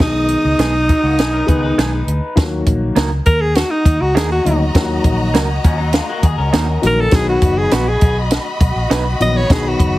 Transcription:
Already playing: violin section D#5 D#6
0.00 fingered electric bass B1, upright piano D#3 G#3 B3 F#4, alto saxophone D#4, kick, snare
0.07 upright piano G#4
0.28 closed hi-hat
0.44 fingered electric bass C#2
0.59 fingered electric bass B1, clean electric guitar G#3 B3 D#4 G#4, snare, closed hi-hat
0.89 clean electric guitar F#3 D#4, kick, closed hi-hat
1.03 fingered electric bass C#2, clean electric guitar A#3 F#4
1.18 fingered electric bass B1, clean electric guitar B3 G#4, snare, closed hi-hat
1.32 clean electric guitar C#4 A#4
1.47 fingered electric bass C#2, upright piano D#3 G#3 B3 B4, clean electric guitar B3 G#4, kick, closed hi-hat
1.63 clean electric guitar D#4 B4
1.78 fingered electric bass B1, clean electric guitar G#3 B3 D#4 G#4, snare, closed hi-hat
2.07 fingered electric bass D2, closed hi-hat
2.35 fingered electric bass D#2, upright piano D#3 F#3 A#3 F4, kick, snare, closed hi-hat
2.43 upright piano F#4
2.66 fingered electric bass A#1, kick, closed hi-hat
2.96 fingered electric bass C#2, clean electric guitar A#3 D#4 F#4 A#4, snare, closed hi-hat
3.26 fingered electric bass D#2, alto saxophone A#4, kick, closed hi-hat
3.41 alto saxophone G#4
3.55 alto saxophone F#4, violin section F#4 D#5 A#5, snare, closed hi-hat
3.70 alto saxophone D#4
3.85 fingered electric bass D#2, kick, closed hi-hat
4.01 fingered electric bass C#2, alto saxophone F#4
4.15 fingered electric bass D#2, clean electric guitar A#3 D#4 F#4 A#4, alto saxophone G#4, snare, closed hi-hat
4.32 alto saxophone F#4
4.44 fingered electric bass D2, upright piano D#3 F#3 A#3 D#4, closed hi-hat
4.74 fingered electric bass D#2, upright piano D#3 F#3 A#3 F4, kick, snare, closed hi-hat
4.82 upright piano F#4
5.04 fingered electric bass A#1, kick, closed hi-hat
5.34 fingered electric bass C#2, clean electric guitar A#3 D#4 F#4 A#4, snare, closed hi-hat
5.64 fingered electric bass D#2, clean electric guitar F3 C#4, kick, closed hi-hat
5.78 clean electric guitar F#3 D#4
5.92 clean electric guitar G#3 F4, snare, closed hi-hat
6.09 clean electric guitar A#3 F#4
6.23 fingered electric bass D#2, clean electric guitar G#4, kick, closed hi-hat
6.38 fingered electric bass C#2, clean electric guitar C#4 A#4
6.53 fingered electric bass D#2, clean electric guitar A#3 D#4 F#4 A#4, snare, closed hi-hat
6.82 fingered electric bass A#1, upright piano D#3 F#3 A#3 F#4, snare, closed hi-hat
6.86 alto saxophone A#4
7.01 alto saxophone A4
7.11 fingered electric bass B1, upright piano D#3 F#3 B3 F#4, violin section F#4 D#5 B5, alto saxophone G#4, kick, snare, closed hi-hat
7.29 alto saxophone F#4
7.42 fingered electric bass F#1, kick, closed hi-hat
7.58 alto saxophone G#4
7.71 fingered electric bass A#1, clean electric guitar B3 D#4 F#4 B4, alto saxophone F#4, snare, closed hi-hat
7.88 alto saxophone G#4
8.01 fingered electric bass B1, kick, closed hi-hat
8.31 snare, closed hi-hat
8.60 fingered electric bass B1, kick, closed hi-hat
8.76 fingered electric bass A#1
8.90 fingered electric bass B1, clean electric guitar B3 D#4 F#4 B4, snare, closed hi-hat
9.20 fingered electric bass A#1, upright piano D#3 F#3 B3 D#4, alto saxophone D#5, closed hi-hat
9.37 alto saxophone C#5
9.50 fingered electric bass B1, upright piano D#3 F#3 B3 F#4, alto saxophone G#4, kick, snare, closed hi-hat
9.68 alto saxophone F#4
9.80 fingered electric bass F#1, kick, closed hi-hat

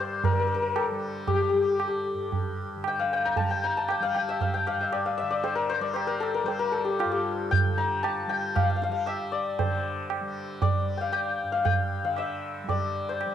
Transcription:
Already playing: tanpura G2 D3 G3, santur G4 A#4 D5 E5
0.00 santur C5
0.24 santur A#4, tabla tin, tabla ge
0.31 tanpura D3, santur A#4
0.39 santur A#4
0.47 santur A#4
0.54 santur A#4
0.62 santur A#4
0.76 santur A4, tabla na
0.91 tanpura G3
1.27 santur G4, tabla tin, tabla ge
1.34 santur G4
1.42 santur G4
1.49 tanpura G3, santur G4
1.56 santur G4
1.64 santur G4
1.72 santur G4
1.79 santur G4, tabla na
1.88 santur G4
2.14 tanpura G2
2.32 tabla tin, tabla ge
2.76 tanpura D3
2.84 santur G5, tabla na
2.99 santur F5
3.13 santur G5
3.25 santur A#5
3.36 tanpura G3, santur A5, tabla tin, tabla ge
3.51 santur G5
3.64 santur A#5
3.77 santur A5
3.89 santur G5, tabla na
4.00 tanpura G3, santur F5
4.15 santur G5, tabla na
4.29 santur E5
4.41 santur F5, tabla tin, tabla ge
4.54 santur G5
4.61 tanpura G2
4.67 santur F5, tabla na
4.81 santur E5
4.92 santur D5, tabla na
5.06 santur F5
5.18 santur E5
5.22 tanpura D3
5.31 santur D5
5.44 santur C5, tabla tin
5.55 santur A#4
5.70 santur C5
5.80 tanpura G3, santur D5
5.94 santur C5, tabla na
6.07 santur A#4
6.20 santur A4, tabla na
6.34 santur A#4
6.44 tanpura G3, santur C5
6.48 tabla tin
6.59 santur A#4
6.72 santur A4
6.85 santur G4
6.99 santur F4, tabla na
7.04 tanpura G2
7.12 santur G4
7.51 santur G5, tabla tin, tabla ge
7.65 tanpura D3
7.78 santur A#5
8.03 santur A5, tabla na
8.27 tanpura G3, santur G5, tabla na
8.55 santur F5, tabla na, tabla ge
8.63 santur F5
8.70 santur F5
8.76 santur F5
8.82 santur F5, tabla te
8.89 tanpura G3, santur F5
9.06 santur E5, tabla na
9.32 santur D5
9.59 tanpura D3, santur C5, tabla tin, tabla ge
10.10 tabla na
10.21 tanpura G3
10.62 santur D5, tabla tin, tabla ge
10.81 tanpura G3
10.97 santur F5 G5
11.12 santur G5, tabla na
11.43 tanpura G2
11.52 santur F5
11.65 santur G5, tabla tin, tabla ge
12.03 tanpura D3, santur F5
12.17 santur E5, tabla na
12.63 tanpura G3
12.69 santur D5, tabla tin, tabla ge
13.09 santur C5
13.21 tabla na
13.26 tanpura G3

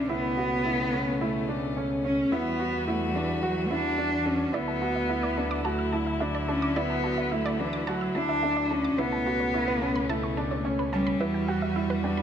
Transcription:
Already playing: cello C#4
0.09 double bass section C#2, string quartet B2 A3 C#4, cello B3, upright piano E4
0.37 upright piano F#4
0.65 upright piano E4
0.93 upright piano C#4
1.21 cello A3, upright piano E4
1.49 upright piano D4
1.77 upright piano C#4
2.04 upright piano C#4, cello C#4
2.32 double bass section E2, string quartet E3 G3 F#4, cello B3, upright piano E4
2.60 upright piano F#4
2.87 cello A3, upright piano E4
3.15 cello E3, upright piano D4
3.43 cello F#3, upright piano F#4
3.71 cello D4, upright piano E4
3.98 upright piano D4
4.26 cello C#4, upright piano D4
4.54 double bass section D2, string quartet D3 F#3 E4, cello B3, upright piano E4, synth arpeggio sound D5
4.68 synth arpeggio sound A5
4.82 upright piano F#4, synth arpeggio sound A5
4.95 synth arpeggio sound E5
5.09 upright piano E4, synth arpeggio sound E5
5.23 synth arpeggio sound D5
5.37 upright piano D4, synth arpeggio sound A5
5.51 synth arpeggio sound D6
5.65 cello A3, upright piano F#4, synth arpeggio sound A5
5.79 synth arpeggio sound E6
5.93 upright piano E4, synth arpeggio sound A5
6.06 synth arpeggio sound E5
6.20 upright piano D4, synth arpeggio sound E5
6.35 synth arpeggio sound D5
6.48 cello C#4, upright piano D4, synth arpeggio sound A5
6.62 synth arpeggio sound D6
6.76 cello B3, upright piano E4, synth arpeggio sound D5
6.90 synth arpeggio sound A5
7.04 upright piano F#4, synth arpeggio sound A5
7.18 synth arpeggio sound E5
7.32 cello A3, upright piano E4, synth arpeggio sound E5
7.46 synth arpeggio sound D5
7.59 cello E3, upright piano D4, synth arpeggio sound A5
7.73 synth arpeggio sound D6
7.87 cello F#3, upright piano F#4, synth arpeggio sound A5
8.01 synth arpeggio sound E6
8.15 cello D4, upright piano E4, synth arpeggio sound A5
8.29 synth arpeggio sound E5
8.43 upright piano D4, synth arpeggio sound E5
8.57 synth arpeggio sound D5
8.71 cello C#4, upright piano D4, synth arpeggio sound A5
8.84 synth arpeggio sound D6
8.98 double bass section C#2, string quartet B2 A3 C#4, cello B3, upright piano E4, synth arpeggio sound B4
9.12 synth arpeggio sound A5
9.26 upright piano F#4, synth arpeggio sound A5
9.40 synth arpeggio sound C#5
9.54 upright piano E4, synth arpeggio sound C#5
9.68 synth arpeggio sound B4
9.82 upright piano C#4, synth arpeggio sound A5
9.96 synth arpeggio sound B5
10.09 cello A3, upright piano E4, synth arpeggio sound A5
10.23 synth arpeggio sound C#6
10.37 upright piano D4, synth arpeggio sound A5
10.51 synth arpeggio sound C#5
10.65 upright piano C#4, synth arpeggio sound C#5
10.79 synth arpeggio sound B4
10.92 cello G3, upright piano C#4, synth arpeggio sound A5
11.07 synth arpeggio sound B5
11.20 double bass section E2, string quartet E3 G3 F#4, upright piano E4, synth arpeggio sound B4
11.34 synth arpeggio sound G5
11.48 upright piano F#4, synth arpeggio sound G5
11.62 synth arpeggio sound E5
11.76 upright piano E4, synth arpeggio sound E5
11.90 synth arpeggio sound B4
12.04 upright piano D4, synth arpeggio sound G5
12.17 synth arpeggio sound B5

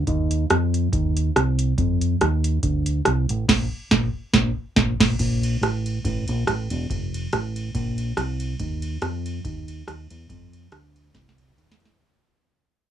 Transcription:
0.07 fingered electric bass D#2, kick, closed hi-hat
0.31 closed hi-hat
0.50 fingered electric bass F2, cross-stick, closed hi-hat
0.74 closed hi-hat
0.93 fingered electric bass D#2, kick, closed hi-hat
1.17 closed hi-hat
1.36 fingered electric bass C2, cross-stick, closed hi-hat
1.59 closed hi-hat
1.78 fingered electric bass F2, kick, closed hi-hat
2.01 closed hi-hat
2.21 fingered electric bass D#2, cross-stick, closed hi-hat
2.44 closed hi-hat
2.63 fingered electric bass D2, kick, closed hi-hat
2.86 closed hi-hat
3.05 fingered electric bass C2, cross-stick, closed hi-hat
3.29 fingered electric bass A1, closed hi-hat
3.49 fingered electric bass A#1, kick, snare, crash
3.91 fingered electric bass A#1, kick, snare
4.34 fingered electric bass A#1, kick, snare
4.76 fingered electric bass A#1, kick, snare
5.00 fingered electric bass A#1, kick, snare, crash
5.19 fingered electric bass A#1, kick, crash, ride
5.43 ride
5.61 fingered electric bass A1, cross-stick, ride
5.86 ride
6.05 fingered electric bass A1, kick, ride
6.28 fingered electric bass A#1, ride
6.47 fingered electric bass A1, cross-stick, ride
6.70 fingered electric bass E1, ride
6.90 fingered electric bass F1, kick, ride
7.14 ride
7.33 fingered electric bass A1, cross-stick, ride
7.56 ride
7.75 fingered electric bass A#1, kick, ride
7.98 ride
8.17 fingered electric bass C2, cross-stick, ride
8.40 ride
8.60 fingered electric bass D#2, kick, ride
8.82 ride
9.02 fingered electric bass F2, cross-stick, ride
9.26 ride
9.45 fingered electric bass D#2, kick, ride
9.68 ride
9.88 fingered electric bass D#2, cross-stick, ride
10.10 fingered electric bass E2, ride
10.30 fingered electric bass F2, kick, ride
10.53 ride
10.72 fingered electric bass D2, cross-stick, ride
10.96 ride
11.14 fingered electric bass C2, kick, snare, ride
11.29 snare
11.38 ride
11.57 fingered electric bass D#2, ride
11.72 snare
11.80 fingered electric bass E2, open hi-hat, ride
11.85 snare

